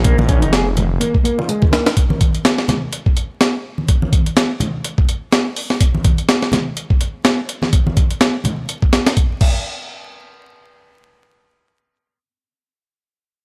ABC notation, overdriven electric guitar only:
X:1
M:4/4
L:1/16
Q:"Swing 16ths" 1/4=125
K:Bbm
V:1 name="Overdriven electric guitar"
B, z D E A z3 B, z B, F A, z B, z | z16 | z16 | z16 |
z16 | z16 | z16 |]